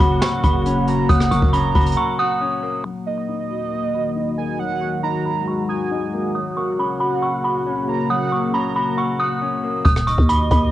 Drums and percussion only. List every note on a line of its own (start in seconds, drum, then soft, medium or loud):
0.00 kick loud
0.00 closed hi-hat medium
0.22 snare loud
0.22 closed hi-hat medium
0.44 kick medium
0.44 closed hi-hat medium
0.66 closed hi-hat medium
0.88 closed hi-hat medium
1.09 kick loud
1.09 closed hi-hat medium
1.20 cross-stick medium
1.31 closed hi-hat medium
1.42 kick medium
1.53 closed hi-hat medium
1.75 kick loud
1.75 closed hi-hat soft
1.81 closed hi-hat medium
1.86 closed hi-hat medium
1.92 closed hi-hat medium
9.85 kick loud
9.85 closed hi-hat medium
9.96 cross-stick medium
10.07 closed hi-hat medium
10.18 kick medium
10.29 closed hi-hat medium
10.51 kick medium
10.51 closed hi-hat medium